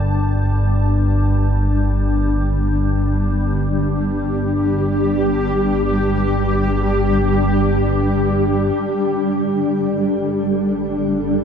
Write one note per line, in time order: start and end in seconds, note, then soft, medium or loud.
0.00 8.73 G1 medium
0.00 8.74 G2 medium
0.00 1.16 G3 soft
0.00 11.44 G3 medium
0.00 11.44 D4 medium
0.00 2.61 A5 medium
2.30 11.44 G4 medium
8.74 11.44 G1 medium
8.74 11.44 G2 medium
9.26 11.44 A4 medium